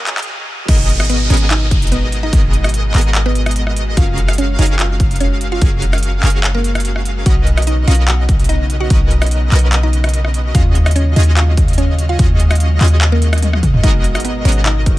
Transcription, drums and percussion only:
0.07 clap, closed hi-hat
0.18 clap, closed hi-hat
0.22 closed hi-hat
0.68 kick, closed hi-hat, crash
0.89 closed hi-hat
1.00 cross-stick, closed hi-hat
1.05 closed hi-hat
1.10 closed hi-hat
1.30 closed hi-hat
1.34 closed hi-hat
1.37 closed hi-hat
1.51 clap, closed hi-hat
1.71 kick, closed hi-hat
1.82 closed hi-hat
1.87 closed hi-hat
1.92 closed hi-hat
2.12 closed hi-hat
2.33 kick, closed hi-hat
2.53 closed hi-hat
2.64 cross-stick, closed hi-hat
2.69 closed hi-hat
2.74 closed hi-hat
2.94 clap, closed hi-hat
2.98 closed hi-hat
3.01 closed hi-hat
3.15 clap, closed hi-hat
3.35 closed hi-hat
3.46 cross-stick, closed hi-hat
3.51 closed hi-hat
3.56 closed hi-hat
3.67 cross-stick
3.76 closed hi-hat
3.97 kick, closed hi-hat
4.18 closed hi-hat
4.28 cross-stick, closed hi-hat
4.33 closed hi-hat
4.38 closed hi-hat
4.59 closed hi-hat
4.62 closed hi-hat
4.66 closed hi-hat
4.79 clap, closed hi-hat
5.00 kick, closed hi-hat
5.11 closed hi-hat
5.16 closed hi-hat
5.20 closed hi-hat
5.41 closed hi-hat
5.61 kick, closed hi-hat
5.82 closed hi-hat
5.93 cross-stick, closed hi-hat
5.98 closed hi-hat
6.03 closed hi-hat
6.23 clap, closed hi-hat
6.27 closed hi-hat
6.30 closed hi-hat
6.44 clap, closed hi-hat
6.64 closed hi-hat
6.75 cross-stick, closed hi-hat
6.80 closed hi-hat
6.85 closed hi-hat
6.96 cross-stick
7.05 closed hi-hat
7.26 kick, closed hi-hat
7.47 closed hi-hat
7.57 cross-stick, closed hi-hat
7.62 closed hi-hat
7.67 closed hi-hat
7.88 closed hi-hat
7.91 closed hi-hat
7.94 closed hi-hat
8.08 clap, closed hi-hat
8.29 kick, closed hi-hat
8.40 closed hi-hat
8.44 closed hi-hat
8.49 closed hi-hat
8.70 closed hi-hat
8.90 kick, closed hi-hat
9.11 closed hi-hat
9.22 cross-stick, closed hi-hat
9.26 closed hi-hat
9.31 closed hi-hat
9.52 clap, closed hi-hat
9.55 closed hi-hat
9.59 closed hi-hat
9.73 clap, closed hi-hat
9.93 closed hi-hat
10.04 cross-stick, closed hi-hat
10.09 closed hi-hat
10.14 closed hi-hat
10.25 cross-stick
10.34 closed hi-hat
10.55 kick, closed hi-hat
10.75 closed hi-hat
10.86 cross-stick, closed hi-hat
10.91 closed hi-hat
10.96 closed hi-hat
11.16 closed hi-hat
11.20 closed hi-hat
11.23 closed hi-hat
11.37 clap, closed hi-hat
11.57 kick, closed hi-hat
11.68 closed hi-hat
11.73 closed hi-hat
11.78 closed hi-hat
11.99 closed hi-hat
12.19 kick, closed hi-hat
12.40 closed hi-hat
12.51 cross-stick, closed hi-hat
12.55 closed hi-hat
12.60 closed hi-hat
12.81 clap, closed hi-hat
12.84 closed hi-hat
12.88 closed hi-hat
13.01 clap, closed hi-hat
13.22 closed hi-hat
13.33 cross-stick, closed hi-hat
13.38 closed hi-hat
13.43 closed hi-hat, high tom
13.53 cross-stick, high tom
13.63 kick, closed hi-hat, mid tom
13.74 mid tom
13.84 kick, closed hi-hat
14.04 closed hi-hat
14.15 cross-stick, closed hi-hat
14.20 closed hi-hat
14.25 closed hi-hat
14.45 closed hi-hat
14.49 closed hi-hat
14.52 closed hi-hat
14.66 clap, closed hi-hat
14.86 kick, closed hi-hat

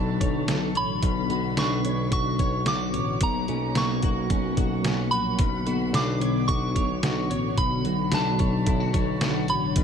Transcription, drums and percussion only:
0.21 kick, closed hi-hat
0.48 snare, closed hi-hat
0.75 closed hi-hat
1.03 kick, closed hi-hat
1.30 closed hi-hat
1.57 snare, closed hi-hat
1.85 closed hi-hat
2.12 kick, closed hi-hat
2.39 kick, closed hi-hat
2.66 snare, closed hi-hat
2.94 closed hi-hat
3.21 kick, closed hi-hat
3.48 closed hi-hat
3.75 snare, closed hi-hat
4.02 kick, closed hi-hat
4.30 kick, closed hi-hat
4.57 kick, closed hi-hat
4.84 snare, closed hi-hat
5.12 closed hi-hat
5.39 kick, closed hi-hat
5.67 closed hi-hat
5.94 snare, closed hi-hat
6.21 closed hi-hat
6.48 kick, closed hi-hat
6.76 kick, closed hi-hat
7.03 snare, closed hi-hat
7.31 closed hi-hat
7.57 kick, closed hi-hat
7.85 closed hi-hat
8.12 snare, closed hi-hat
8.39 kick, closed hi-hat
8.66 kick, closed hi-hat
8.94 kick, closed hi-hat
9.21 snare, closed hi-hat
9.48 closed hi-hat
9.76 kick, closed hi-hat

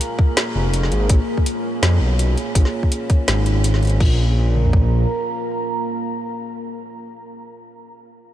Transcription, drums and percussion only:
0.01 closed hi-hat
0.19 kick
0.37 snare, closed hi-hat
0.74 closed hi-hat
0.83 snare
0.92 closed hi-hat
1.09 kick, closed hi-hat
1.38 kick
1.46 closed hi-hat
1.83 snare, closed hi-hat
2.19 closed hi-hat
2.37 closed hi-hat
2.55 kick, closed hi-hat
2.65 snare
2.83 kick
2.92 closed hi-hat
3.10 kick, closed hi-hat
3.28 snare, closed hi-hat
3.46 closed hi-hat
3.64 closed hi-hat
3.74 snare
3.83 closed hi-hat
3.85 closed hi-hat
3.87 closed hi-hat
3.89 closed hi-hat
4.00 kick, crash
4.55 mid tom
4.65 floor tom
4.73 kick

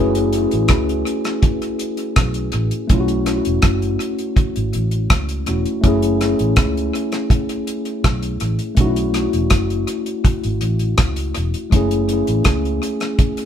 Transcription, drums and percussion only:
0.15 closed hi-hat
0.33 closed hi-hat
0.51 closed hi-hat
0.68 kick, cross-stick, closed hi-hat
0.89 closed hi-hat
1.07 closed hi-hat
1.24 cross-stick, closed hi-hat
1.43 kick, closed hi-hat
1.62 closed hi-hat
1.79 closed hi-hat
1.97 closed hi-hat
2.16 kick, cross-stick, closed hi-hat
2.34 closed hi-hat
2.52 closed hi-hat
2.71 closed hi-hat
2.89 kick, closed hi-hat
3.08 closed hi-hat
3.26 cross-stick, closed hi-hat
3.45 closed hi-hat
3.62 kick, cross-stick, closed hi-hat
3.82 closed hi-hat
4.00 closed hi-hat
4.19 closed hi-hat
4.37 kick, closed hi-hat
4.56 closed hi-hat
4.73 closed hi-hat
4.91 closed hi-hat
5.10 kick, cross-stick, closed hi-hat
5.29 closed hi-hat
5.46 closed hi-hat
5.66 closed hi-hat
5.84 kick, closed hi-hat
6.02 closed hi-hat
6.21 cross-stick, closed hi-hat
6.39 closed hi-hat
6.56 kick, cross-stick, closed hi-hat
6.77 closed hi-hat
6.95 closed hi-hat
7.12 cross-stick, closed hi-hat
7.30 kick, closed hi-hat
7.49 closed hi-hat
7.67 closed hi-hat
7.85 closed hi-hat
8.04 kick, cross-stick, closed hi-hat
8.23 closed hi-hat
8.40 closed hi-hat
8.59 closed hi-hat
8.77 kick, closed hi-hat
8.96 closed hi-hat
9.14 cross-stick, closed hi-hat
9.33 closed hi-hat
9.50 kick, cross-stick, closed hi-hat
9.70 closed hi-hat
9.88 closed hi-hat
10.06 closed hi-hat
10.25 kick, closed hi-hat
10.44 closed hi-hat
10.61 closed hi-hat
10.79 closed hi-hat
10.98 kick, cross-stick, closed hi-hat
11.16 closed hi-hat
11.35 closed hi-hat
11.54 closed hi-hat
11.72 kick, closed hi-hat
11.91 closed hi-hat
12.09 closed hi-hat
12.27 closed hi-hat
12.44 kick, cross-stick, closed hi-hat
12.65 closed hi-hat
12.83 closed hi-hat
13.00 cross-stick, closed hi-hat
13.19 kick, closed hi-hat
13.37 closed hi-hat

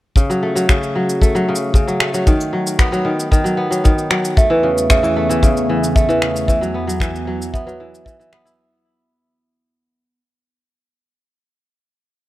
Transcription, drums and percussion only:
0.16 kick, shaker
0.31 shaker
0.57 shaker
0.69 finger snap, kick, shaker
0.83 shaker
1.09 shaker
1.22 kick, shaker
1.36 shaker
1.56 shaker
1.74 kick, shaker
1.88 shaker
2.00 finger snap
2.14 shaker
2.27 kick, shaker
2.40 shaker
2.67 shaker
2.79 finger snap, kick, shaker
2.93 shaker
3.20 shaker
3.32 kick, shaker
3.46 shaker
3.72 shaker
3.85 kick, shaker
3.98 shaker
4.11 finger snap
4.25 shaker
4.37 kick, shaker
4.78 shaker
4.90 finger snap, kick, shaker
5.04 shaker
5.31 shaker
5.43 kick, shaker
5.57 shaker
5.84 shaker
5.96 kick, shaker
6.10 shaker
6.22 finger snap
6.36 shaker
6.48 kick, shaker
6.63 shaker
6.89 shaker
7.00 finger snap, kick, shaker
7.16 shaker
7.42 shaker
7.54 kick, shaker
7.69 shaker
7.95 shaker
8.06 kick, shaker
8.21 shaker
8.33 finger snap
8.47 shaker

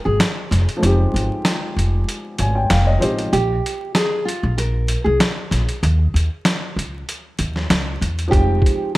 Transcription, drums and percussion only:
0.20 snare, closed hi-hat
0.51 snare, closed hi-hat
0.69 closed hi-hat
0.83 closed hi-hat
1.16 closed hi-hat
1.45 snare, closed hi-hat
1.79 closed hi-hat
2.09 closed hi-hat
2.38 closed hi-hat
2.70 snare, closed hi-hat
3.02 closed hi-hat
3.19 closed hi-hat
3.33 closed hi-hat
3.66 closed hi-hat
3.95 snare, closed hi-hat
4.28 closed hi-hat
4.58 closed hi-hat
4.88 closed hi-hat
5.20 snare, closed hi-hat
5.51 snare, closed hi-hat
5.69 closed hi-hat
5.83 closed hi-hat
6.16 closed hi-hat
6.45 snare, closed hi-hat
6.79 closed hi-hat
7.09 closed hi-hat
7.39 closed hi-hat
7.56 snare
7.70 snare, closed hi-hat
8.02 closed hi-hat
8.19 closed hi-hat
8.32 kick, closed hi-hat
8.62 kick
8.66 closed hi-hat

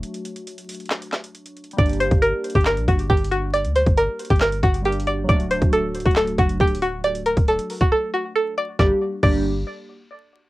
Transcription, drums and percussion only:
0.03 closed hi-hat
0.14 closed hi-hat
0.25 closed hi-hat
0.36 closed hi-hat
0.47 closed hi-hat
0.58 closed hi-hat
0.69 closed hi-hat, open hi-hat
0.74 closed hi-hat
0.80 closed hi-hat
0.85 closed hi-hat
0.90 snare, clap, closed hi-hat
1.02 closed hi-hat
1.12 snare, clap, closed hi-hat
1.24 closed hi-hat
1.35 closed hi-hat
1.46 closed hi-hat
1.57 closed hi-hat
1.64 closed hi-hat
1.71 closed hi-hat
1.78 kick, closed hi-hat
1.86 closed hi-hat
1.89 closed hi-hat
1.93 closed hi-hat
2.00 closed hi-hat
2.11 kick, closed hi-hat
2.22 closed hi-hat
2.44 closed hi-hat
2.50 closed hi-hat
2.55 kick, closed hi-hat
2.61 closed hi-hat
2.66 snare, clap, closed hi-hat
2.77 closed hi-hat
2.88 kick, closed hi-hat
2.99 closed hi-hat
3.10 kick, closed hi-hat
3.17 closed hi-hat
3.24 closed hi-hat
3.32 closed hi-hat
3.54 closed hi-hat
3.65 closed hi-hat
3.76 closed hi-hat
3.86 kick, closed hi-hat
3.97 closed hi-hat
4.19 closed hi-hat
4.25 closed hi-hat
4.30 kick, closed hi-hat
4.36 closed hi-hat
4.41 snare, clap, closed hi-hat
4.52 closed hi-hat
4.63 kick, closed hi-hat
4.74 closed hi-hat
4.85 closed hi-hat
4.92 closed hi-hat
5.00 closed hi-hat
5.07 closed hi-hat
5.29 kick, closed hi-hat
5.40 closed hi-hat
5.51 closed hi-hat
5.62 kick, closed hi-hat
5.73 closed hi-hat
5.95 closed hi-hat
6.00 closed hi-hat
6.06 kick
6.11 closed hi-hat
6.16 snare, clap, closed hi-hat
6.27 closed hi-hat
6.38 kick, closed hi-hat
6.49 closed hi-hat
6.60 kick, closed hi-hat
6.68 closed hi-hat
6.75 closed hi-hat
6.82 closed hi-hat
7.04 closed hi-hat
7.15 closed hi-hat
7.26 closed hi-hat
7.37 kick, closed hi-hat
7.48 closed hi-hat
7.59 closed hi-hat
7.70 open hi-hat
7.81 kick, closed hi-hat
8.79 kick, snare
9.23 kick, crash

